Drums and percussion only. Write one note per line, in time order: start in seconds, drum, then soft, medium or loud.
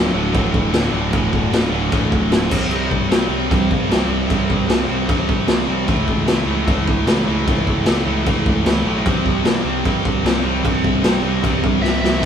0.35 kick loud
0.35 crash medium
0.54 kick loud
0.74 snare loud
0.74 crash medium
1.13 kick loud
1.13 crash medium
1.33 kick medium
1.53 snare loud
1.53 crash medium
1.92 kick loud
1.92 crash medium
2.12 kick loud
2.32 snare loud
2.32 crash medium
2.51 kick loud
2.51 crash loud
2.71 crash medium
2.91 kick medium
3.12 snare loud
3.12 crash medium
3.51 kick loud
3.51 crash medium
3.71 kick medium
3.92 snare loud
3.92 crash medium
4.30 kick loud
4.30 crash medium
4.50 kick medium
4.70 snare loud
4.70 crash medium
5.09 kick loud
5.09 crash medium
5.29 kick medium
5.48 snare loud
5.48 crash medium
5.88 kick loud
5.88 crash soft
6.08 kick medium
6.28 snare loud
6.28 crash medium
6.68 kick loud
6.68 crash medium
6.88 kick loud
7.07 snare loud
7.07 crash medium
7.48 kick loud
7.48 crash medium
7.67 kick medium
7.86 snare loud
7.86 crash medium
8.26 kick loud
8.26 crash medium
8.46 kick medium
8.66 snare loud
8.66 crash medium
9.06 kick loud
9.06 crash medium
9.26 kick medium
9.45 snare loud
9.45 crash medium
9.85 kick loud
9.85 crash soft
10.05 kick loud
10.26 snare loud
10.26 crash medium
10.65 kick loud
10.65 crash medium
10.84 kick medium
11.04 snare loud
11.04 crash medium
11.44 kick loud
11.44 crash medium
11.64 kick loud
11.84 snare medium
12.04 snare medium